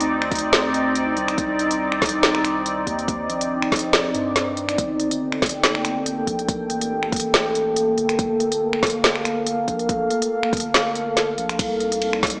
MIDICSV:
0, 0, Header, 1, 4, 480
1, 0, Start_track
1, 0, Key_signature, -2, "minor"
1, 0, Tempo, 425532
1, 1557, Time_signature, 4, 2, 24, 8
1, 13987, End_track
2, 0, Start_track
2, 0, Title_t, "Ambient pad"
2, 0, Program_c, 0, 92
2, 0, Note_on_c, 0, 60, 75
2, 0, Note_on_c, 0, 63, 72
2, 0, Note_on_c, 0, 74, 89
2, 5351, Note_off_c, 0, 63, 0
2, 5351, Note_off_c, 0, 74, 0
2, 5352, Note_off_c, 0, 60, 0
2, 5395, Note_on_c, 0, 58, 78
2, 5397, Note_on_c, 0, 69, 72
2, 5397, Note_on_c, 0, 79, 88
2, 9198, Note_off_c, 0, 79, 0
2, 9240, Note_on_c, 0, 77, 86
2, 13031, Note_off_c, 0, 58, 0
2, 13032, Note_off_c, 0, 69, 0
2, 13040, Note_off_c, 0, 77, 0
2, 13074, Note_on_c, 0, 60, 78
2, 13075, Note_on_c, 0, 74, 88
2, 13076, Note_on_c, 0, 63, 70
2, 13987, Note_off_c, 0, 60, 0
2, 13987, Note_off_c, 0, 63, 0
2, 13987, Note_off_c, 0, 74, 0
2, 13987, End_track
3, 0, Start_track
3, 0, Title_t, "Sub bass"
3, 0, Program_c, 1, 38
3, 0, Note_on_c, 1, 38, 98
3, 1298, Note_off_c, 1, 38, 0
3, 1316, Note_on_c, 1, 36, 101
3, 1539, Note_off_c, 1, 36, 0
3, 1556, Note_on_c, 1, 36, 102
3, 2258, Note_off_c, 1, 36, 0
3, 2276, Note_on_c, 1, 36, 94
3, 3218, Note_off_c, 1, 36, 0
3, 3235, Note_on_c, 1, 39, 103
3, 3698, Note_off_c, 1, 39, 0
3, 3714, Note_on_c, 1, 34, 101
3, 4658, Note_off_c, 1, 34, 0
3, 4676, Note_on_c, 1, 43, 98
3, 5378, Note_off_c, 1, 43, 0
3, 5396, Note_on_c, 1, 31, 96
3, 6098, Note_off_c, 1, 31, 0
3, 6116, Note_on_c, 1, 31, 100
3, 7058, Note_off_c, 1, 31, 0
3, 7075, Note_on_c, 1, 34, 97
3, 7538, Note_off_c, 1, 34, 0
3, 7556, Note_on_c, 1, 33, 99
3, 8979, Note_off_c, 1, 33, 0
3, 8997, Note_on_c, 1, 31, 100
3, 9219, Note_off_c, 1, 31, 0
3, 9236, Note_on_c, 1, 31, 95
3, 9939, Note_off_c, 1, 31, 0
3, 9957, Note_on_c, 1, 31, 98
3, 10899, Note_off_c, 1, 31, 0
3, 10917, Note_on_c, 1, 34, 103
3, 11379, Note_off_c, 1, 34, 0
3, 11876, Note_on_c, 1, 31, 98
3, 12819, Note_off_c, 1, 31, 0
3, 12834, Note_on_c, 1, 34, 100
3, 13058, Note_off_c, 1, 34, 0
3, 13075, Note_on_c, 1, 36, 97
3, 13778, Note_off_c, 1, 36, 0
3, 13794, Note_on_c, 1, 36, 103
3, 13987, Note_off_c, 1, 36, 0
3, 13987, End_track
4, 0, Start_track
4, 0, Title_t, "Drums"
4, 6, Note_on_c, 9, 42, 76
4, 119, Note_off_c, 9, 42, 0
4, 246, Note_on_c, 9, 26, 61
4, 355, Note_on_c, 9, 36, 105
4, 356, Note_on_c, 9, 42, 51
4, 359, Note_off_c, 9, 26, 0
4, 400, Note_off_c, 9, 42, 0
4, 400, Note_on_c, 9, 42, 67
4, 435, Note_off_c, 9, 42, 0
4, 435, Note_on_c, 9, 42, 79
4, 468, Note_off_c, 9, 36, 0
4, 548, Note_off_c, 9, 42, 0
4, 596, Note_on_c, 9, 38, 125
4, 596, Note_on_c, 9, 42, 78
4, 709, Note_off_c, 9, 38, 0
4, 709, Note_off_c, 9, 42, 0
4, 837, Note_on_c, 9, 42, 53
4, 950, Note_off_c, 9, 42, 0
4, 1077, Note_on_c, 9, 42, 76
4, 1190, Note_off_c, 9, 42, 0
4, 1316, Note_on_c, 9, 42, 49
4, 1429, Note_off_c, 9, 42, 0
4, 1448, Note_on_c, 9, 26, 58
4, 1448, Note_on_c, 9, 42, 36
4, 1555, Note_on_c, 9, 36, 111
4, 1557, Note_off_c, 9, 42, 0
4, 1557, Note_on_c, 9, 42, 74
4, 1560, Note_off_c, 9, 26, 0
4, 1668, Note_off_c, 9, 36, 0
4, 1670, Note_off_c, 9, 42, 0
4, 1796, Note_on_c, 9, 42, 54
4, 1909, Note_off_c, 9, 42, 0
4, 1926, Note_on_c, 9, 42, 76
4, 2039, Note_off_c, 9, 42, 0
4, 2166, Note_on_c, 9, 26, 61
4, 2276, Note_on_c, 9, 36, 104
4, 2277, Note_on_c, 9, 38, 60
4, 2277, Note_on_c, 9, 42, 50
4, 2279, Note_off_c, 9, 26, 0
4, 2320, Note_off_c, 9, 42, 0
4, 2320, Note_on_c, 9, 42, 66
4, 2356, Note_off_c, 9, 42, 0
4, 2356, Note_on_c, 9, 42, 82
4, 2388, Note_off_c, 9, 36, 0
4, 2389, Note_off_c, 9, 38, 0
4, 2469, Note_off_c, 9, 42, 0
4, 2516, Note_on_c, 9, 38, 121
4, 2516, Note_on_c, 9, 42, 83
4, 2629, Note_off_c, 9, 38, 0
4, 2629, Note_off_c, 9, 42, 0
4, 2647, Note_on_c, 9, 26, 57
4, 2758, Note_off_c, 9, 26, 0
4, 2758, Note_on_c, 9, 26, 56
4, 2758, Note_on_c, 9, 42, 53
4, 2871, Note_off_c, 9, 26, 0
4, 2871, Note_off_c, 9, 42, 0
4, 2999, Note_on_c, 9, 42, 78
4, 3112, Note_off_c, 9, 42, 0
4, 3235, Note_on_c, 9, 36, 56
4, 3237, Note_on_c, 9, 42, 55
4, 3348, Note_off_c, 9, 36, 0
4, 3350, Note_off_c, 9, 42, 0
4, 3369, Note_on_c, 9, 42, 37
4, 3475, Note_on_c, 9, 36, 111
4, 3478, Note_off_c, 9, 42, 0
4, 3478, Note_on_c, 9, 42, 76
4, 3588, Note_off_c, 9, 36, 0
4, 3591, Note_off_c, 9, 42, 0
4, 3718, Note_on_c, 9, 42, 59
4, 3831, Note_off_c, 9, 42, 0
4, 3848, Note_on_c, 9, 42, 83
4, 3961, Note_off_c, 9, 42, 0
4, 4088, Note_on_c, 9, 26, 60
4, 4195, Note_on_c, 9, 36, 104
4, 4197, Note_on_c, 9, 38, 62
4, 4197, Note_on_c, 9, 42, 49
4, 4201, Note_off_c, 9, 26, 0
4, 4240, Note_off_c, 9, 42, 0
4, 4240, Note_on_c, 9, 42, 70
4, 4276, Note_off_c, 9, 42, 0
4, 4276, Note_on_c, 9, 42, 85
4, 4308, Note_off_c, 9, 36, 0
4, 4310, Note_off_c, 9, 38, 0
4, 4389, Note_off_c, 9, 42, 0
4, 4435, Note_on_c, 9, 38, 119
4, 4435, Note_on_c, 9, 42, 82
4, 4548, Note_off_c, 9, 38, 0
4, 4548, Note_off_c, 9, 42, 0
4, 4676, Note_on_c, 9, 42, 54
4, 4789, Note_off_c, 9, 42, 0
4, 4915, Note_on_c, 9, 38, 64
4, 4915, Note_on_c, 9, 42, 81
4, 5028, Note_off_c, 9, 38, 0
4, 5028, Note_off_c, 9, 42, 0
4, 5156, Note_on_c, 9, 42, 56
4, 5268, Note_off_c, 9, 42, 0
4, 5287, Note_on_c, 9, 26, 57
4, 5287, Note_on_c, 9, 42, 38
4, 5395, Note_on_c, 9, 36, 121
4, 5396, Note_off_c, 9, 42, 0
4, 5396, Note_on_c, 9, 42, 83
4, 5399, Note_off_c, 9, 26, 0
4, 5508, Note_off_c, 9, 36, 0
4, 5509, Note_off_c, 9, 42, 0
4, 5636, Note_on_c, 9, 42, 61
4, 5749, Note_off_c, 9, 42, 0
4, 5767, Note_on_c, 9, 42, 81
4, 5880, Note_off_c, 9, 42, 0
4, 6005, Note_on_c, 9, 26, 54
4, 6115, Note_on_c, 9, 36, 111
4, 6116, Note_on_c, 9, 38, 62
4, 6116, Note_on_c, 9, 42, 55
4, 6118, Note_off_c, 9, 26, 0
4, 6159, Note_off_c, 9, 42, 0
4, 6159, Note_on_c, 9, 42, 67
4, 6197, Note_off_c, 9, 42, 0
4, 6197, Note_on_c, 9, 42, 86
4, 6228, Note_off_c, 9, 36, 0
4, 6229, Note_off_c, 9, 38, 0
4, 6309, Note_off_c, 9, 42, 0
4, 6357, Note_on_c, 9, 38, 125
4, 6357, Note_on_c, 9, 42, 88
4, 6469, Note_off_c, 9, 38, 0
4, 6469, Note_off_c, 9, 42, 0
4, 6486, Note_on_c, 9, 26, 57
4, 6596, Note_off_c, 9, 26, 0
4, 6596, Note_on_c, 9, 26, 54
4, 6596, Note_on_c, 9, 42, 55
4, 6709, Note_off_c, 9, 26, 0
4, 6709, Note_off_c, 9, 42, 0
4, 6838, Note_on_c, 9, 42, 86
4, 6950, Note_off_c, 9, 42, 0
4, 7075, Note_on_c, 9, 36, 61
4, 7077, Note_on_c, 9, 42, 55
4, 7188, Note_off_c, 9, 36, 0
4, 7190, Note_off_c, 9, 42, 0
4, 7207, Note_on_c, 9, 42, 39
4, 7316, Note_off_c, 9, 42, 0
4, 7316, Note_on_c, 9, 36, 127
4, 7316, Note_on_c, 9, 42, 83
4, 7428, Note_off_c, 9, 36, 0
4, 7429, Note_off_c, 9, 42, 0
4, 7556, Note_on_c, 9, 42, 58
4, 7669, Note_off_c, 9, 42, 0
4, 7687, Note_on_c, 9, 42, 86
4, 7800, Note_off_c, 9, 42, 0
4, 7927, Note_on_c, 9, 26, 51
4, 8036, Note_on_c, 9, 36, 118
4, 8038, Note_on_c, 9, 42, 52
4, 8040, Note_off_c, 9, 26, 0
4, 8081, Note_off_c, 9, 42, 0
4, 8081, Note_on_c, 9, 42, 70
4, 8118, Note_off_c, 9, 42, 0
4, 8118, Note_on_c, 9, 42, 89
4, 8149, Note_off_c, 9, 36, 0
4, 8231, Note_off_c, 9, 42, 0
4, 8279, Note_on_c, 9, 38, 124
4, 8279, Note_on_c, 9, 42, 86
4, 8391, Note_off_c, 9, 38, 0
4, 8391, Note_off_c, 9, 42, 0
4, 8520, Note_on_c, 9, 42, 58
4, 8632, Note_off_c, 9, 42, 0
4, 8758, Note_on_c, 9, 42, 87
4, 8871, Note_off_c, 9, 42, 0
4, 8998, Note_on_c, 9, 42, 57
4, 9111, Note_off_c, 9, 42, 0
4, 9127, Note_on_c, 9, 26, 52
4, 9127, Note_on_c, 9, 42, 38
4, 9236, Note_off_c, 9, 42, 0
4, 9236, Note_on_c, 9, 36, 127
4, 9236, Note_on_c, 9, 42, 80
4, 9240, Note_off_c, 9, 26, 0
4, 9349, Note_off_c, 9, 36, 0
4, 9349, Note_off_c, 9, 42, 0
4, 9477, Note_on_c, 9, 42, 59
4, 9590, Note_off_c, 9, 42, 0
4, 9608, Note_on_c, 9, 42, 81
4, 9721, Note_off_c, 9, 42, 0
4, 9849, Note_on_c, 9, 26, 55
4, 9956, Note_on_c, 9, 36, 119
4, 9957, Note_on_c, 9, 38, 68
4, 9957, Note_on_c, 9, 42, 55
4, 9962, Note_off_c, 9, 26, 0
4, 10001, Note_off_c, 9, 42, 0
4, 10001, Note_on_c, 9, 42, 69
4, 10037, Note_off_c, 9, 42, 0
4, 10037, Note_on_c, 9, 42, 81
4, 10069, Note_off_c, 9, 36, 0
4, 10070, Note_off_c, 9, 38, 0
4, 10150, Note_off_c, 9, 42, 0
4, 10197, Note_on_c, 9, 38, 127
4, 10197, Note_on_c, 9, 42, 87
4, 10310, Note_off_c, 9, 38, 0
4, 10310, Note_off_c, 9, 42, 0
4, 10327, Note_on_c, 9, 26, 53
4, 10437, Note_off_c, 9, 26, 0
4, 10437, Note_on_c, 9, 26, 53
4, 10437, Note_on_c, 9, 42, 57
4, 10550, Note_off_c, 9, 26, 0
4, 10550, Note_off_c, 9, 42, 0
4, 10677, Note_on_c, 9, 42, 84
4, 10790, Note_off_c, 9, 42, 0
4, 10917, Note_on_c, 9, 36, 64
4, 10918, Note_on_c, 9, 42, 54
4, 11029, Note_off_c, 9, 36, 0
4, 11031, Note_off_c, 9, 42, 0
4, 11047, Note_on_c, 9, 42, 39
4, 11157, Note_off_c, 9, 42, 0
4, 11157, Note_on_c, 9, 36, 125
4, 11157, Note_on_c, 9, 42, 80
4, 11269, Note_off_c, 9, 36, 0
4, 11270, Note_off_c, 9, 42, 0
4, 11398, Note_on_c, 9, 42, 55
4, 11511, Note_off_c, 9, 42, 0
4, 11528, Note_on_c, 9, 42, 82
4, 11641, Note_off_c, 9, 42, 0
4, 11768, Note_on_c, 9, 26, 53
4, 11876, Note_on_c, 9, 36, 117
4, 11879, Note_on_c, 9, 42, 51
4, 11881, Note_off_c, 9, 26, 0
4, 11921, Note_off_c, 9, 42, 0
4, 11921, Note_on_c, 9, 42, 64
4, 11957, Note_off_c, 9, 42, 0
4, 11957, Note_on_c, 9, 42, 82
4, 11989, Note_off_c, 9, 36, 0
4, 12070, Note_off_c, 9, 42, 0
4, 12118, Note_on_c, 9, 38, 127
4, 12118, Note_on_c, 9, 42, 81
4, 12231, Note_off_c, 9, 38, 0
4, 12231, Note_off_c, 9, 42, 0
4, 12357, Note_on_c, 9, 42, 52
4, 12470, Note_off_c, 9, 42, 0
4, 12597, Note_on_c, 9, 38, 67
4, 12597, Note_on_c, 9, 42, 81
4, 12710, Note_off_c, 9, 38, 0
4, 12710, Note_off_c, 9, 42, 0
4, 12837, Note_on_c, 9, 42, 54
4, 12949, Note_off_c, 9, 42, 0
4, 12966, Note_on_c, 9, 26, 52
4, 12966, Note_on_c, 9, 42, 37
4, 13075, Note_on_c, 9, 36, 122
4, 13076, Note_off_c, 9, 42, 0
4, 13076, Note_on_c, 9, 42, 74
4, 13076, Note_on_c, 9, 51, 61
4, 13078, Note_off_c, 9, 26, 0
4, 13188, Note_off_c, 9, 36, 0
4, 13189, Note_off_c, 9, 42, 0
4, 13189, Note_off_c, 9, 51, 0
4, 13315, Note_on_c, 9, 42, 52
4, 13428, Note_off_c, 9, 42, 0
4, 13445, Note_on_c, 9, 42, 80
4, 13555, Note_on_c, 9, 51, 47
4, 13558, Note_off_c, 9, 42, 0
4, 13668, Note_off_c, 9, 51, 0
4, 13685, Note_on_c, 9, 26, 56
4, 13795, Note_on_c, 9, 36, 114
4, 13795, Note_on_c, 9, 38, 63
4, 13795, Note_on_c, 9, 42, 47
4, 13798, Note_off_c, 9, 26, 0
4, 13838, Note_off_c, 9, 42, 0
4, 13838, Note_on_c, 9, 42, 64
4, 13875, Note_off_c, 9, 42, 0
4, 13875, Note_on_c, 9, 42, 81
4, 13907, Note_off_c, 9, 36, 0
4, 13907, Note_off_c, 9, 38, 0
4, 13987, Note_off_c, 9, 42, 0
4, 13987, End_track
0, 0, End_of_file